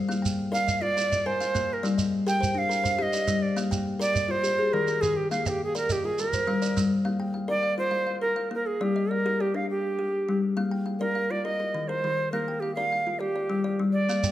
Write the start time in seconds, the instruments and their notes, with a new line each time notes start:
0.08 kalimba A#3 F5, shekere
0.22 kalimba G5, shekere
0.52 kalimba A#4 D5, native american-style wooden flute F5, shekere
0.67 kalimba D#5, shekere
0.81 kalimba F4, native american-style wooden flute D5
0.97 kalimba D5, shekere
1.12 kalimba D#5, shekere
1.26 kalimba A#4 G#5, native american-style wooden flute C5
1.41 kalimba F5, shekere
1.55 kalimba A#3, shekere
1.73 native american-style wooden flute A#4
1.83 kalimba G3 D5, shekere
1.98 kalimba D#5, shekere
2.27 kalimba G4 A#4, native american-style wooden flute G5, shekere
2.41 kalimba C5, shekere
2.55 kalimba D4, native american-style wooden flute F5
2.69 kalimba A#4, shekere
2.84 kalimba C5, shekere
2.98 kalimba G4 F5, native american-style wooden flute D#5
3.13 kalimba D5, shekere
3.27 kalimba G3, shekere
3.42 native american-style wooden flute D5
3.56 kalimba A#3 F5, shekere
3.71 kalimba G5, shekere
3.99 kalimba A#4, native american-style wooden flute D5, shekere
4.14 kalimba D#5, shekere
4.28 kalimba F4, native american-style wooden flute C5
4.43 kalimba G4, shekere
4.59 kalimba G#4
4.73 kalimba D#3 D5, native american-style wooden flute A#4
4.88 kalimba A#4, shekere
5.01 kalimba D#3, native american-style wooden flute G#4, shekere
5.17 native american-style wooden flute G4
5.31 kalimba A#3 F5, native american-style wooden flute F5, shekere
5.46 native american-style wooden flute G4, kalimba G5, shekere
5.64 native american-style wooden flute G#4
5.75 kalimba A#4 D5, native american-style wooden flute A#4, shekere
5.89 native american-style wooden flute G4, kalimba D#5, shekere
6.04 kalimba F4, native american-style wooden flute G#4
6.18 kalimba A#4, native american-style wooden flute A#4, shekere
6.33 kalimba C5, shekere
6.47 kalimba G3 F5
6.62 kalimba D5, shekere
6.77 kalimba G3, shekere
7.05 kalimba A#3 F5
7.20 kalimba G5
7.34 kalimba F5
7.48 kalimba A#4 D5, native american-style wooden flute D5
7.63 kalimba F5
7.78 kalimba F4, native american-style wooden flute C5
7.91 kalimba F5
8.07 kalimba F5
8.21 native american-style wooden flute A#4, kalimba A#4
8.36 kalimba F5
8.51 kalimba A#3, native american-style wooden flute A#4
8.66 native american-style wooden flute G#4
8.81 kalimba G3 D5, native american-style wooden flute G4
8.96 kalimba D#5
9.11 native american-style wooden flute A#4, kalimba D5
9.26 kalimba G4 A#4
9.40 native american-style wooden flute G4, kalimba D5
9.54 kalimba D4, native american-style wooden flute F5
9.70 native american-style wooden flute G4
9.99 kalimba G4
10.29 kalimba G3
10.57 kalimba A#3 F5
10.71 kalimba G5
10.86 kalimba F5
11.00 native american-style wooden flute A#4, kalimba A#4 D5
11.15 kalimba F5
11.31 kalimba F4, native american-style wooden flute D5
11.44 kalimba A#4, native american-style wooden flute D#5
11.60 kalimba A#4
11.74 kalimba D#3
11.88 kalimba A#4, native american-style wooden flute C5
12.04 kalimba D#3
12.32 kalimba A#3 F5, native american-style wooden flute A#4
12.48 kalimba G5
12.60 native american-style wooden flute G4, kalimba F5
12.75 kalimba A#4 D5, native american-style wooden flute F5
12.92 kalimba F5
13.07 kalimba F4
13.20 native american-style wooden flute G4, kalimba D5
13.36 kalimba D5
13.50 kalimba G3
13.64 kalimba D5
13.79 kalimba G3
13.93 native american-style wooden flute D5
14.09 kalimba A#3 F5, shekere
14.23 kalimba G5, shekere